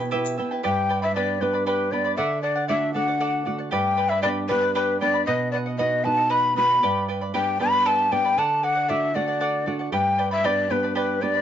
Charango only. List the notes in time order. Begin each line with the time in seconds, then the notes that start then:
0.00 E4 B4 G5
0.11 E4 G4 B4 E5 G5
0.38 E4 B4 E5 G5
0.51 E4 B4 G5
0.63 G4 B4 D5 G5 B5
0.89 B4 D5 G5 B5
1.02 B4 D5 B5
1.16 G4 B4 D5 G5 B5
1.41 B4 D5 G5 B5
1.53 B4 D5 B5
1.66 G4 B4 D5 G5 B5
1.92 B4 D5 G5 B5
2.05 B4 D5 B5
2.17 A4 D5 F#5
2.43 A4 D5 F#5
2.56 D5 F#5
2.68 A4 D5 F#5
2.94 A4 D5 F#5
3.08 D5 F#5
3.20 A4 D5 F#5
3.45 A4 D5 F#5
3.58 D5 F#5
3.71 G4 B4 D5 G5 B5
3.97 B4 D5 G5 B5
4.10 B4 D5 B5
4.23 G4 B4 D5 G5 B5
4.49 B4 D5 G5 B5
4.62 B4 D5 B5
4.75 G4 B4 D5 G5 B5
5.01 B4 D5 G5 B5
5.14 B4 D5 B5
5.27 B4 D#5 F#5
5.53 B4 D#5 F#5
5.66 D#5 F#5
5.79 B4 D#5 F#5
6.04 B4 D#5 F#5
6.17 D#5 F#5
6.29 B4 D#5 F#5
6.56 B4 D#5 F#5
6.70 D#5 F#5
6.83 G4 B4 D5 G5 B5
7.08 B4 D5 G5 B5
7.21 B4 D5 B5
7.34 G4 B4 D5 G5 B5
7.59 B4 D5 G5 B5
7.72 B4 D5 B5
7.85 G4 B4 D5 G5 B5
8.11 B4 D5 G5 B5
8.25 B4 D5 B5
8.38 A4 D5 F#5
8.63 A4 D5 F#5
8.75 D5 F#5
8.88 A4 D5 F#5
9.14 A4 D5 F#5
9.28 D5 F#5
9.40 A4 D5 F#5
9.66 A4 D5 F#5
9.79 D5 F#5
9.92 G4 B4 D5 G5 B5
10.18 B4 D5 G5 B5
10.31 B4 D5 B5
10.44 G4 B4 D5 G5 B5
10.70 B4 D5 G5 B5
10.83 B4 D5 B5
10.95 G4 B4 D5 G5 B5
11.21 B4 D5 G5 B5
11.34 B4 D5 B5